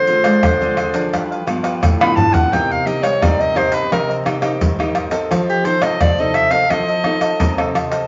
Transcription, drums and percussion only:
0.07 pandeiro soft
0.07 shaker medium
0.24 pandeiro medium
0.24 tamborim medium
0.24 shaker medium
0.43 pandeiro medium
0.43 tamborim medium
0.43 shaker medium
0.43 surdo medium
0.62 pandeiro soft
0.62 shaker soft
0.77 pandeiro medium
0.77 tamborim medium
0.77 shaker medium
0.94 pandeiro medium
0.94 shaker medium
1.13 pandeiro medium
1.13 tamborim medium
1.13 shaker medium
1.13 surdo medium
1.32 pandeiro soft
1.32 shaker soft
1.47 pandeiro soft
1.47 tamborim medium
1.47 shaker medium
1.64 pandeiro medium
1.64 tamborim medium
1.64 shaker medium
1.83 pandeiro medium
1.83 tamborim medium
1.83 shaker medium
1.83 surdo loud
2.01 pandeiro soft
2.01 tamborim medium
2.01 shaker soft
2.17 surdo loud
2.17 pandeiro medium
2.34 pandeiro medium
2.34 shaker medium
2.34 surdo medium
2.53 pandeiro medium
2.53 tamborim medium
2.53 shaker medium
2.53 surdo soft
2.71 pandeiro soft
2.71 shaker soft
2.87 pandeiro medium
3.03 pandeiro medium
3.03 tamborim medium
3.03 shaker medium
3.22 pandeiro medium
3.22 tamborim medium
3.22 shaker medium
3.22 surdo loud
3.41 pandeiro soft
3.41 shaker soft
3.56 pandeiro medium
3.56 tamborim medium
3.56 shaker medium
3.72 pandeiro medium
3.72 shaker medium
3.92 pandeiro medium
3.92 tamborim medium
3.92 shaker medium
3.92 surdo soft
4.11 pandeiro soft
4.11 shaker soft
4.26 pandeiro medium
4.26 tamborim medium
4.26 shaker medium
4.42 pandeiro medium
4.42 tamborim medium
4.42 shaker medium
4.61 pandeiro medium
4.61 shaker medium
4.61 surdo loud
4.80 pandeiro soft
4.80 tamborim medium
4.80 shaker soft
4.95 pandeiro medium
4.95 tamborim medium
5.11 pandeiro medium
5.11 shaker medium
5.31 pandeiro medium
5.31 tamborim medium
5.31 shaker medium
5.31 surdo medium
5.50 pandeiro soft
5.50 shaker soft
5.65 pandeiro medium
5.65 shaker medium
5.82 pandeiro medium
5.82 tamborim medium
5.82 shaker medium
6.00 pandeiro medium
6.00 tamborim medium
6.00 shaker medium
6.00 surdo loud
6.18 pandeiro soft
6.18 shaker soft
6.34 pandeiro medium
6.34 tamborim medium
6.51 pandeiro medium
6.51 shaker medium
6.70 pandeiro medium
6.70 tamborim medium
6.70 shaker medium
6.70 surdo medium
6.88 pandeiro soft
6.88 shaker soft
7.04 pandeiro soft
7.04 tamborim medium
7.21 pandeiro medium
7.21 tamborim medium
7.21 shaker medium
7.40 pandeiro medium
7.40 shaker loud
7.40 surdo loud
7.58 pandeiro soft
7.58 tamborim medium
7.58 shaker soft
7.75 pandeiro medium
7.75 tamborim medium
7.92 pandeiro medium
7.92 shaker medium

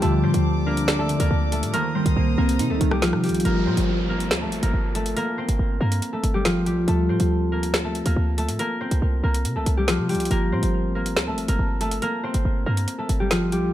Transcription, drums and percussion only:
0.02 closed hi-hat medium
0.34 closed hi-hat medium
0.77 closed hi-hat medium
0.88 finger snap loud
0.88 snare loud
1.09 closed hi-hat medium
1.20 closed hi-hat medium
1.52 closed hi-hat medium
1.63 closed hi-hat medium
1.74 closed hi-hat medium
2.06 closed hi-hat medium
2.49 closed hi-hat medium
2.59 closed hi-hat medium
2.81 closed hi-hat medium
2.91 cross-stick loud
3.02 finger snap medium
3.02 snare loud
3.02 closed hi-hat medium
3.13 cross-stick medium
3.24 closed hi-hat soft
3.24 open hi-hat medium
3.29 closed hi-hat medium
3.34 closed hi-hat medium
3.40 closed hi-hat medium
3.45 closed hi-hat medium
3.77 closed hi-hat medium
4.20 closed hi-hat medium
4.31 finger snap loud
4.31 snare loud
4.52 closed hi-hat medium
4.63 closed hi-hat medium
4.95 closed hi-hat medium
5.06 closed hi-hat medium
5.17 closed hi-hat medium
5.49 closed hi-hat medium
5.92 closed hi-hat medium
6.02 closed hi-hat medium
6.24 closed hi-hat medium
6.45 finger snap medium
6.45 snare loud
6.45 closed hi-hat medium
6.66 closed hi-hat medium
6.88 closed hi-hat medium
7.20 closed hi-hat medium
7.63 closed hi-hat medium
7.74 finger snap loud
7.74 snare loud
7.95 closed hi-hat medium
8.06 closed hi-hat medium
8.38 closed hi-hat medium
8.49 closed hi-hat medium
8.59 closed hi-hat medium
8.91 closed hi-hat medium
9.34 closed hi-hat medium
9.45 closed hi-hat medium
9.66 closed hi-hat medium
9.88 finger snap medium
9.88 snare loud
9.88 closed hi-hat medium
10.09 closed hi-hat soft
10.09 open hi-hat medium
10.15 closed hi-hat medium
10.20 closed hi-hat medium
10.25 closed hi-hat medium
10.31 closed hi-hat medium
10.63 closed hi-hat medium
11.06 closed hi-hat medium
11.17 finger snap loud
11.17 snare loud
11.38 closed hi-hat medium
11.48 closed hi-hat medium
11.81 closed hi-hat medium
11.91 closed hi-hat medium
12.02 closed hi-hat medium
12.34 closed hi-hat medium
12.77 closed hi-hat medium
12.88 closed hi-hat medium
13.09 closed hi-hat medium
13.31 finger snap medium
13.31 snare loud
13.31 closed hi-hat medium
13.52 closed hi-hat medium

